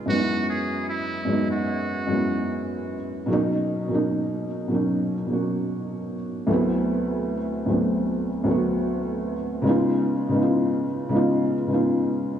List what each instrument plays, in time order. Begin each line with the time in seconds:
0.06 felt piano F#2 G#3 B3, muted trumpet F#4
0.11 felt piano C#4 D#4
0.19 felt piano E4
0.50 muted trumpet G#4
0.89 muted trumpet E4
1.25 felt piano F#2 G#3 B3
1.30 felt piano C#4 D#4
1.51 muted trumpet F#4
2.07 felt piano F#2 G#3 B3
2.12 felt piano C#4 E4
3.26 felt piano B2 F#3 A#3
3.31 felt piano C#4 D#4
3.88 felt piano B2 F#3 A#3
3.93 felt piano C#4 D#4
4.68 felt piano B2 F#3 A#3
4.73 felt piano C#4 D#4
5.26 felt piano B2 F#3 A#3
5.31 felt piano C#4 F#4
6.47 felt piano D2 F#3 A3 B3
6.52 felt piano C4 E4
7.66 felt piano D2 F#3 A3
7.70 felt piano B3 C4 D4
8.44 felt piano D2 F#3 A3
8.48 felt piano B3 C4 F#4
9.62 felt piano C#3 G#3 B3
9.67 felt piano D#4 F4
10.29 felt piano C#3 G#3 B3
10.34 felt piano D#4 E4
10.42 felt piano F4
11.09 felt piano C#3 G#3 B3
11.14 felt piano D#4 F4
11.67 felt piano C#3 G#3 B3
11.72 felt piano D#4 F4